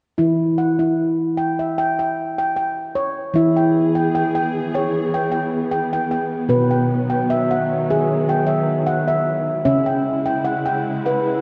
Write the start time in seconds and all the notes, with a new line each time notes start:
0.18 E3 E4
0.58 F#5
0.79 E4
1.37 G5
1.59 E5
1.78 G5
1.99 G5
2.38 G5
2.56 G5
2.95 C#5
3.34 E3 B3 E4 G#4 E5
3.57 G5
3.95 G5
4.15 G5
4.35 G5
4.74 C#5 G5
5.14 G5
5.32 G5
5.71 G5
5.93 G5
6.11 G5
6.49 B2 D#3 F#3 B3 B4
6.71 G5
7.10 G5
7.30 E5
7.51 F#5
7.90 G#4 E5
8.29 G5
8.47 E5
8.87 F#5
9.08 E5
9.65 C#3 G#3 C#4 E4 E5
9.86 G5
10.26 G5
10.45 F#5
10.66 G5
11.06 B4 F#5